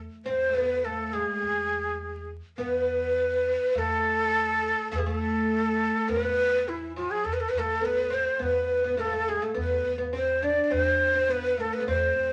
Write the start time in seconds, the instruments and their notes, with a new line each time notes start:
0.25 upright bass E2, oud C4, ney C5
0.49 oud A3
0.55 oud B3, ney B4
0.85 oud A3, ney A4
1.13 oud G#3, ney G#4
1.42 upright bass E2
2.58 upright bass E2, oud B3, ney B4
3.74 upright bass E2, oud A3, ney B4
3.78 ney A4
4.92 upright bass E2, oud A3, ney A4
4.96 oud A3 B3, ney G#4
5.06 oud A3, ney A4
6.08 upright bass E2, oud B3, ney A#4
6.16 oud C4
6.21 oud B3, ney B4
6.68 oud E3, ney E4
6.96 oud F3, ney F4
7.11 ney G#4
7.24 upright bass E2, ney A4
7.33 ney B4
7.40 ney A4
7.49 upright bass E2, ney B4
7.58 oud A3, ney A4
7.81 oud B3, ney B4
8.10 oud C4, ney C5
8.39 upright bass E2, oud B3, ney B4
8.84 oud B3
8.97 oud A3, ney A4
9.05 oud B3
9.13 oud A3
9.29 oud G#3, ney G#4
9.42 oud A3, ney A4
9.54 upright bass E2, oud B3
9.59 ney B4
9.98 oud B3
10.13 oud C4, ney C5
10.42 oud D4, ney D5
10.64 ney D5
10.70 upright bass E2, oud C4, ney C5
11.14 oud C4
11.29 oud B3, ney B4
11.57 oud A3, ney A4
11.73 ney B4
11.80 oud B3
11.87 upright bass E2, oud C4, ney C5
12.16 upright bass E2